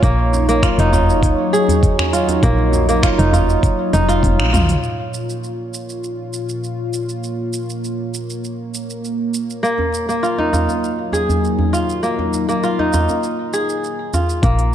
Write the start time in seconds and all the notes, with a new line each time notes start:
Already playing: A#3 F4 G#4 C#5
0.01 A#1 A#3 D#4, kick, open hi-hat, shaker
0.19 djembe slap
0.28 F#3
0.33 djembe slap, djembe tone, shaker
0.49 A#3, open hi-hat, shaker
0.63 F4, finger snap, kick, open hi-hat, shaker
0.78 F1 D#4, open hi-hat
0.93 F4, djembe bass, shaker
1.10 shaker
1.23 C#2, kick, open hi-hat, shaker
1.53 G#4, shaker
1.69 open hi-hat, djembe bass, shaker
1.83 kick, open hi-hat, shaker
1.99 finger snap, djembe tone, djembe bass
2.13 F4, open hi-hat, shaker
2.28 open hi-hat, djembe tone, shaker
2.43 A#1 A#3, kick, open hi-hat, shaker
2.58 djembe slap
2.73 djembe slap, djembe tone, shaker
2.89 A#3, open hi-hat, shaker
3.03 F4, finger snap, kick, open hi-hat, shaker
3.18 F1 D#4, open hi-hat
3.32 F4, open hi-hat, djembe bass, shaker
3.50 shaker
3.63 kick, open hi-hat, shaker
3.93 F1 D#4, open hi-hat, djembe tone, shaker
4.09 F4, open hi-hat, shaker
4.23 F1, kick, open hi-hat, high tom, shaker
4.39 A#1, finger snap, high tom
4.53 F4, open hi-hat, mid tom, djembe bass, shaker
4.69 mid tom, open hi-hat, shaker
4.84 A#2, shaker
4.92 A#3 F4
5.14 shaker
5.30 shaker
5.44 shaker
5.74 shaker
5.90 shaker
6.04 shaker
6.33 shaker
6.49 shaker
6.64 shaker
6.94 shaker
7.09 shaker
7.24 shaker
7.53 shaker
7.70 shaker
7.84 shaker
8.14 shaker
8.30 shaker
8.44 shaker
8.74 shaker
8.90 shaker
9.05 shaker
9.34 shaker
9.50 shaker
9.63 A#3, shaker
9.78 djembe slap, djembe tone
9.93 D#4, djembe slap, shaker
10.09 F#3 A#3, shaker
10.23 F4, shaker
10.38 D#4, djembe tone
10.53 F4, djembe bass, shaker
10.69 djembe tone, shaker
10.84 shaker
11.12 G#4, djembe tone, shaker
11.29 djembe bass, shaker
11.45 shaker
11.59 djembe bass
11.73 F4, shaker
11.90 shaker
12.03 A#3, shaker
12.19 djembe slap, djembe tone
12.33 djembe slap, shaker
12.49 A#3, shaker
12.64 F4, shaker
12.79 D#4, djembe tone
12.93 F4, djembe bass, shaker
13.09 djembe tone, shaker
13.23 shaker
13.53 G#4, shaker
13.69 shaker
13.84 shaker
14.14 F4, djembe bass, shaker
14.29 shaker
14.42 A#1 A#3 F5, kick, open hi-hat, shaker
14.57 A#4, open hi-hat, djembe slap
14.69 C#5